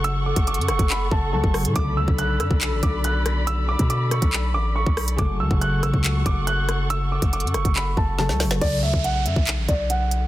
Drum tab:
CC |------------------------------------------------|------------------------------------------------|------------------------------------------------|------------------------------------------------|
HH |x--------x--x-x-x-x--x--------------------o--x--|x-----------x-----x-----x-----x-----x-----x-----|x--------x--x-----x--x--------------------o--x--|x-----------x-----x-----x-----x-----x-----x-----|
CP |------------------------x-----------------------|------------------------x-----------------------|------------------------x-----------------------|------------------------x-----------------------|
SD |------------------r-----------------------r-----|------------------r-----------------------r-----|------------------r-----------------------r-----|------------------r-----------------------r-----|
BD |---------o-----------o--------o--------o--------|o--------o-----------o--------o-----------------|---------o-----------o-----------------o--------|o--------o-----------o--------o-----------------|

CC |------------------------------------------------|x-----------------------------------------------|
HH |x--------x--x-x-x-x--x--------------------o--x--|x-----------x-----x-----x-----x-----x-----x-----|
CP |------------------------x-----------------------|------------------------x-----------------------|
SD |------------------r-----------------o--o--o--o--|------------------------------------------------|
BD |---------o-----------o--------o-----------------|o--------o-----------o--------o-----------------|